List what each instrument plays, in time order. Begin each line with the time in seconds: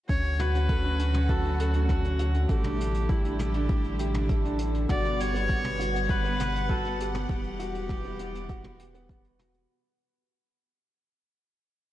0.09 sub bass D2, string section D3 F#3 A3 C#4 F#4, grand piano C#4, viola C#5, kick, closed hi-hat
0.24 closed hi-hat
0.39 grand piano F#4, viola B4, closed hi-hat, mid tom
0.54 grand piano C#4, closed hi-hat
0.69 grand piano A4, kick, closed hi-hat
0.84 grand piano C#4, closed hi-hat
0.99 grand piano C#4, closed hi-hat
1.14 closed hi-hat, mid tom
1.29 grand piano F#4, viola A4, kick, closed hi-hat
1.44 grand piano C#4, closed hi-hat
1.60 viola F#4, grand piano A4, closed hi-hat
1.74 grand piano C#4, closed hi-hat
1.89 grand piano C#4, kick, closed hi-hat, mid tom
2.04 closed hi-hat
2.19 grand piano F#4, closed hi-hat
2.34 grand piano C#4, closed hi-hat
2.49 sub bass A1, string section G3 E4, viola G4, grand piano A4, kick, closed hi-hat
2.64 grand piano D4, closed hi-hat, mid tom
2.79 grand piano D4, closed hi-hat
2.94 closed hi-hat
3.09 viola E4, grand piano G4, kick, closed hi-hat
3.24 grand piano D4, closed hi-hat
3.39 viola G4, grand piano A4, closed hi-hat, mid tom
3.54 grand piano D4, closed hi-hat
3.69 grand piano D4, kick, closed hi-hat
3.84 closed hi-hat
3.99 grand piano G4, closed hi-hat
4.14 grand piano D4, closed hi-hat, mid tom
4.29 grand piano A4, kick, closed hi-hat
4.44 grand piano D4, closed hi-hat
4.59 grand piano D4, closed hi-hat
4.74 closed hi-hat
4.89 sub bass G1, string section G3 B3 F#5, grand piano F#4, viola D5, kick, closed hi-hat, mid tom
5.04 grand piano B3, closed hi-hat
5.19 grand piano G4, viola C#5, closed hi-hat
5.34 grand piano B3, closed hi-hat
5.49 grand piano B3, kick, closed hi-hat
5.64 closed hi-hat, mid tom
5.79 grand piano F#4, closed hi-hat
5.94 grand piano B3, closed hi-hat
6.09 grand piano G4, viola B4, kick, closed hi-hat
6.24 grand piano B3, closed hi-hat
6.39 grand piano B3, closed hi-hat, mid tom
6.55 closed hi-hat
6.69 grand piano F#4, viola A4, kick, closed hi-hat
6.85 grand piano B3, closed hi-hat
7.00 grand piano G4, viola G4, closed hi-hat
7.14 grand piano B3, closed hi-hat, mid tom
7.29 sub bass E1, string section E3 G3, grand piano B3, kick, closed hi-hat
7.44 closed hi-hat
7.59 grand piano F#4, closed hi-hat
7.74 grand piano B3, closed hi-hat
7.89 grand piano G4, kick, closed hi-hat, mid tom
8.04 grand piano B3, closed hi-hat
8.19 grand piano B3, closed hi-hat
8.35 closed hi-hat
8.49 grand piano F#4, kick, closed hi-hat
8.64 grand piano B3, closed hi-hat, mid tom
8.79 grand piano G4, closed hi-hat
8.94 grand piano B3, closed hi-hat
9.09 grand piano B3, kick, closed hi-hat
9.24 closed hi-hat
9.39 grand piano F#4, closed hi-hat, mid tom
9.54 grand piano B3, closed hi-hat